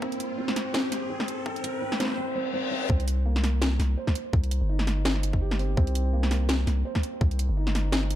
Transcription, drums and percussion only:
0.02 kick
0.12 closed hi-hat
0.20 closed hi-hat
0.48 snare
0.56 snare, closed hi-hat
0.74 snare
0.92 snare, closed hi-hat
1.20 kick, snare
1.28 closed hi-hat
1.46 kick
1.56 closed hi-hat
1.64 closed hi-hat
1.92 snare
2.00 snare, closed hi-hat
2.02 snare
2.05 snare
2.08 snare
2.10 snare
2.12 snare
2.14 snare
2.16 snare
2.90 kick
3.00 closed hi-hat
3.08 closed hi-hat
3.36 snare
3.44 snare, open hi-hat
3.62 snare
3.80 snare, open hi-hat
4.07 kick, snare
4.15 closed hi-hat
4.33 kick
4.44 closed hi-hat
4.51 closed hi-hat
4.79 snare
4.87 snare, open hi-hat
5.05 snare
5.16 snare
5.23 closed hi-hat
5.33 kick
5.51 snare
5.59 open hi-hat
5.77 kick
5.87 closed hi-hat
5.95 closed hi-hat
6.23 snare
6.31 snare, open hi-hat
6.49 snare
6.67 snare, open hi-hat
6.95 kick, snare
7.03 closed hi-hat
7.21 kick
7.31 closed hi-hat
7.39 closed hi-hat
7.67 snare
7.75 snare, open hi-hat
7.92 snare
8.03 snare
8.10 closed hi-hat

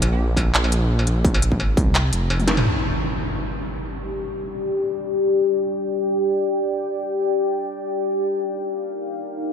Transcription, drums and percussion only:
0.02 closed hi-hat, struck metal
0.37 kick, open hi-hat, struck metal
0.55 clap, closed hi-hat
0.64 struck metal
0.72 closed hi-hat
0.99 struck metal
1.07 closed hi-hat
1.25 kick, open hi-hat
1.34 struck metal
1.42 closed hi-hat
1.52 kick
1.60 struck metal
1.77 kick, open hi-hat
1.95 clap, closed hi-hat, struck metal
2.13 closed hi-hat
2.30 struck metal
2.40 open hi-hat, high tom
2.48 snare, closed hi-hat
2.57 mid tom, struck metal
2.65 crash

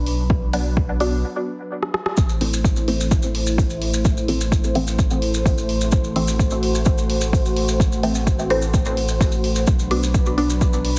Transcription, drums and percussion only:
0.06 open hi-hat
0.30 kick
0.53 open hi-hat
0.77 kick
1.00 open hi-hat
1.83 cross-stick
1.94 cross-stick
2.06 cross-stick
2.17 kick, maracas
2.29 maracas
2.41 open hi-hat
2.53 maracas
2.64 kick, maracas
2.76 maracas
2.88 open hi-hat
3.01 maracas
3.11 kick, maracas
3.22 maracas
3.35 open hi-hat
3.46 maracas
3.58 kick, open hi-hat, maracas
3.70 maracas
3.82 open hi-hat
3.94 maracas
4.05 kick, maracas
4.17 maracas
4.28 open hi-hat
4.41 maracas
4.52 kick, maracas
4.64 maracas
4.75 open hi-hat
4.87 maracas
4.99 kick, maracas
5.10 maracas
5.22 open hi-hat
5.34 maracas
5.46 kick, open hi-hat, maracas
5.58 maracas
5.69 open hi-hat
5.81 maracas
5.92 kick, maracas
6.04 maracas
6.16 open hi-hat
6.28 maracas
6.39 kick, maracas
6.50 maracas
6.63 open hi-hat
6.75 maracas
6.85 kick, maracas
6.98 maracas
7.10 open hi-hat
7.21 maracas
7.33 kick, open hi-hat, maracas
7.46 maracas
7.56 open hi-hat
7.68 maracas
7.80 kick, maracas
7.92 maracas
8.03 open hi-hat
8.15 maracas
8.27 kick, maracas
8.39 maracas
8.50 open hi-hat
8.62 maracas
8.74 kick, maracas
8.85 maracas
8.97 open hi-hat
9.08 maracas
9.21 kick, open hi-hat, maracas
9.32 maracas
9.44 open hi-hat
9.56 maracas
9.67 kick, maracas
9.79 maracas
9.91 open hi-hat
10.03 maracas
10.14 kick, maracas
10.26 maracas
10.38 open hi-hat
10.50 maracas
10.61 kick, maracas
10.73 maracas
10.85 open hi-hat

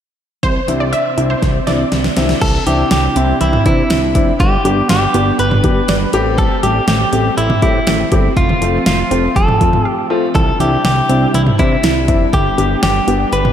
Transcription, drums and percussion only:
0.43 kick, closed hi-hat
0.68 closed hi-hat
0.93 closed hi-hat
1.18 closed hi-hat
1.42 kick, snare, closed hi-hat
1.67 snare, closed hi-hat
1.92 snare, closed hi-hat
2.04 snare
2.16 snare, closed hi-hat
2.29 snare
2.41 kick, closed hi-hat, crash
2.67 closed hi-hat
2.91 snare, closed hi-hat
3.16 closed hi-hat
3.41 closed hi-hat
3.53 mid tom
3.66 kick, closed hi-hat
3.90 snare, closed hi-hat
4.15 kick, closed hi-hat
4.40 kick, closed hi-hat
4.65 closed hi-hat
4.89 snare, closed hi-hat
5.14 closed hi-hat
5.39 closed hi-hat
5.51 mid tom
5.64 kick, closed hi-hat
5.88 snare, closed hi-hat
6.13 closed hi-hat
6.38 kick, closed hi-hat
6.63 closed hi-hat
6.88 snare, closed hi-hat
7.13 closed hi-hat
7.38 closed hi-hat
7.50 mid tom
7.62 kick, closed hi-hat
7.87 snare, closed hi-hat
8.12 kick, closed hi-hat
8.37 kick, closed hi-hat
8.49 mid tom
8.62 closed hi-hat
8.86 snare, closed hi-hat
9.11 closed hi-hat
9.36 kick, closed hi-hat
9.48 mid tom
9.61 kick, closed hi-hat
9.73 mid tom
10.35 kick, closed hi-hat
10.60 closed hi-hat
10.85 snare, closed hi-hat
11.10 closed hi-hat
11.34 closed hi-hat
11.47 mid tom
11.59 kick, closed hi-hat
11.83 snare, closed hi-hat
12.08 kick, closed hi-hat
12.33 kick, closed hi-hat
12.58 closed hi-hat
12.83 snare, closed hi-hat
13.08 closed hi-hat
13.33 closed hi-hat
13.45 mid tom

